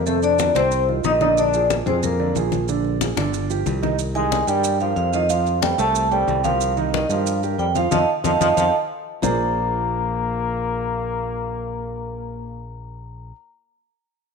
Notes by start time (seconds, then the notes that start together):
Already playing: F2
0.06 C3 A3 C4 A4 C5, high conga, maracas
0.23 D4 D5, high conga, maracas
0.38 D#3 D#4 F4, high conga, maracas
0.55 C2 C3 C4 C5, high conga, maracas
0.71 high conga, maracas
0.88 D#3 D#4 F4, high conga
1.04 A#1 D#4 D#5, high conga, maracas
1.21 D3 D4 D#4 D5 D#5, high conga, maracas
1.37 D4 D5, high conga, maracas
1.54 F3 F4 G#4, high conga, maracas
1.70 high conga, maracas
1.86 F2 F3 C4 F4 G#4 C5, high conga, low conga, maracas
2.03 A#3 A#4, high conga, low conga, maracas
2.19 D3 D4 D5, high conga
2.35 A#1 F3 F4 G#4, high conga, maracas
2.52 high conga, maracas
2.68 D3 D4 D5, high conga, maracas
2.85 high conga
3.01 F3 F4 G#4, high conga, maracas
3.17 G1 D3 D4 D5, high conga, maracas
3.34 high conga, maracas
3.50 F3 F4 G4, high conga, maracas
3.66 C2, high conga, maracas
3.82 D#3 D#4 D#5, high conga, maracas
3.99 high conga, maracas
4.15 D#3 G#3 D#4 D#5 G#5, high conga, maracas
4.32 high conga, maracas
4.47 G2 G3 G4 A#4 G5, high conga, maracas
4.64 high conga, maracas
4.80 F3 G3 G4 A#4 F5, high conga, maracas
4.96 F2 F3 F5, high conga, maracas
5.13 D#3 F3 F4 D#5 F5, maracas
5.29 F3 F4 F5, high conga, maracas
5.46 high conga, maracas
5.62 G3 A3 A4 C5 G5, high conga, maracas
5.78 C2 A3 A4 C5 A5, high conga, maracas
5.95 high conga, maracas
6.11 G3 A3 A4 C5 G5, high conga, maracas
6.27 C2, high conga, maracas
6.44 F3 G3 G4 A#4 F5, high conga, maracas
6.61 high conga, maracas
6.77 D#3 D#4 D#5, high conga, maracas
6.94 D#3 D#5, high conga, maracas
7.09 G2 F3 G3 G4 A#4 F5, high conga, maracas
7.26 high conga, maracas
7.43 G3 G4 A#4, high conga, maracas
7.58 F2 G3 G5, high conga, maracas
7.75 F3 F4 F5, high conga, maracas
7.91 F2 F3 D#4 F4 A4 D#5 F5 A5, high conga, maracas
8.24 F2 F3 D#4 F4 A4 D#5 F5 A5, high conga, maracas
8.40 F2 F3 D#4 F4 A4 D#5 F5 A5, high conga, maracas
8.57 F2 F3 D#4 F4 A4 D#5 F5 A5, high conga, maracas
9.22 A#1 A#3 F4 G#4 A#4 C5 D5 A#5, low conga, maracas